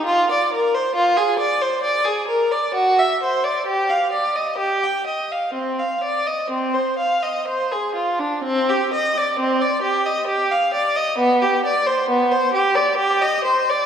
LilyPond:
\new Staff \with { instrumentName = "Violin" } { \time 3/4 \key c \minor \tempo 4 = 65 f'16 d''16 bes'16 c''16 f'16 aes'16 d''16 c''16 d''16 aes'16 bes'16 d''16 | fis'16 e''16 c''16 d''16 g'16 f''16 d''16 ees''16 g'16 g''16 ees''16 f''16 | c'16 f''16 d''16 ees''16 c'16 c''16 f''16 ees''16 c''16 aes'16 f'16 d'16 | c'16 g'16 ees''16 d''16 c'16 d''16 g'16 ees''16 g'16 f''16 d''16 ees''16 |
b16 g'16 d''16 c''16 b16 c''16 g'16 d''16 g'16 ees''16 c''16 d''16 | }